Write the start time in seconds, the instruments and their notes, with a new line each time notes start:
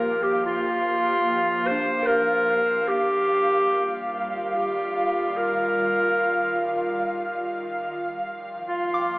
Already playing: ambient pad D#2 F3 A#3 G4 F5, clarinet A#4, synth bell C5
0.23 clarinet G4
0.45 clarinet F4
1.67 clarinet C5
1.71 synth bell D4
2.03 synth bell A#4
2.07 clarinet A#4
2.88 ambient pad D#3, clarinet G4
3.10 ambient pad G3
3.35 ambient pad F4
4.55 clarinet G4
5.37 clarinet A#4
7.82 ambient pad D#2
7.95 ambient pad F3 G5
8.46 ambient pad A#3
8.67 clarinet F4
8.94 synth bell D6